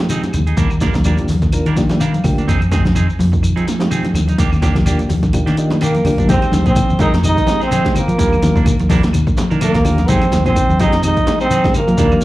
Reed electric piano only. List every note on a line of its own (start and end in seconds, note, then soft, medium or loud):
0.00 0.37 G#3 medium
0.00 0.37 C4 medium
0.00 0.37 D#4 medium
0.00 0.37 G4 medium
0.81 0.87 F4 medium
0.81 0.88 G4 medium
0.94 0.99 F4 medium
0.94 1.00 G4 medium
1.05 1.28 A#3 medium
1.05 1.28 D4 medium
1.05 1.28 F4 medium
1.05 1.28 G4 medium
1.53 1.65 A#3 medium
1.53 1.65 D4 medium
1.53 1.66 F4 medium
1.53 1.66 A#4 medium
1.77 1.99 A#3 medium
1.77 2.00 D4 medium
1.77 2.00 F4 medium
1.77 2.00 G4 medium
1.77 1.99 D5 medium
2.01 2.23 F5 medium
2.24 2.48 A#3 medium
2.24 2.48 D4 medium
2.24 2.49 F4 medium
2.24 2.49 G4 medium
2.24 2.47 G5 medium
3.79 4.18 G#3 medium
3.79 4.18 C4 medium
3.79 4.18 D#4 medium
3.79 4.18 G4 medium
4.63 4.69 F4 medium
4.63 4.69 G4 loud
4.76 4.81 F4 medium
4.76 4.81 G4 medium
4.87 5.09 A#3 medium
4.87 5.09 D4 medium
4.87 5.09 F4 medium
4.87 5.09 G4 medium
5.34 5.46 A#3 medium
5.34 5.46 D4 medium
5.34 5.46 F4 medium
5.34 5.46 G4 medium
5.58 5.80 A#3 medium
5.58 5.80 D4 medium
5.58 5.81 F4 medium
5.58 5.80 G4 medium
5.58 5.80 D#5 medium
5.82 6.26 G5 medium
6.06 6.29 A#3 medium
6.06 6.29 D4 medium
6.06 6.29 F4 medium
6.06 6.29 G4 loud
6.29 6.63 G#3 medium
6.29 6.63 C4 medium
6.29 6.63 D#4 medium
6.29 6.64 G4 loud
7.00 7.12 G#3 medium
7.00 7.13 C4 medium
7.00 7.13 D#4 medium
7.00 7.13 A#4 medium
7.24 7.37 G#3 medium
7.24 7.37 C4 medium
7.24 7.37 D#4 medium
7.24 7.37 G4 medium
7.48 7.65 G#3 medium
7.48 7.65 C4 medium
7.48 7.66 D#4 medium
7.48 7.65 G4 medium
7.85 8.01 G#3 medium
7.85 8.01 C4 medium
7.85 8.01 D#4 medium
7.85 8.01 G4 medium
8.19 8.63 A#3 medium
8.19 8.64 D4 medium
8.19 8.64 F4 medium
8.19 8.64 G4 medium
9.85 9.97 A#3 medium
9.85 9.97 D4 medium
9.85 9.97 F4 medium
9.85 9.97 G4 loud
10.08 10.43 G#3 medium
10.08 10.43 C4 medium
10.08 10.43 D#4 medium
10.08 10.43 G4 medium
10.80 10.92 G#3 medium
10.80 10.92 C4 medium
10.80 10.92 D#4 medium
10.80 10.93 G4 medium
11.04 11.16 G#3 medium
11.04 11.16 C4 medium
11.04 11.16 D#4 medium
11.04 11.16 G4 medium
11.27 11.45 G#3 medium
11.27 11.45 C4 medium
11.27 11.45 D#4 medium
11.27 11.45 G4 medium
11.65 11.80 G#3 medium
11.65 11.80 C4 medium
11.65 11.80 D#4 medium
11.65 11.80 G4 medium
11.97 12.24 A#3 medium
11.97 12.24 D4 medium
11.97 12.24 F4 medium
11.97 12.24 G4 medium